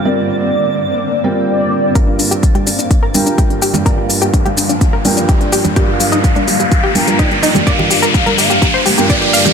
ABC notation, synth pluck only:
X:1
M:4/4
L:1/16
Q:1/4=126
K:Gm
V:1 name="Synth pluck"
z16 | B D D G D G D D D B D D G D G D | B D D G D G D D D B D D G D G D | G G, G, E G, D G, G, G, G G, G, E G, E G, |
d G G B G B G G G c G G d G f G |]